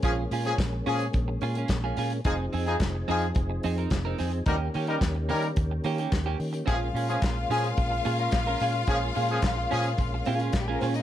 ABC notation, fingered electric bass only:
X:1
M:4/4
L:1/8
Q:1/4=109
K:Bbdor
V:1 name="Fingered electric bass" clef=bass
B,,, B,, B,,, B,, B,,, B,, B,,, B,, | F,,, F,, F,,, F,, F,,, F,, F,,, F,, | E,, E, E,, E, E,, E, E,, E, | B,,, B,, B,,, B,, B,,, B,, B,,, B,, |
B,,, B,, B,,, B,, B,,, B,, B,,, B,, |]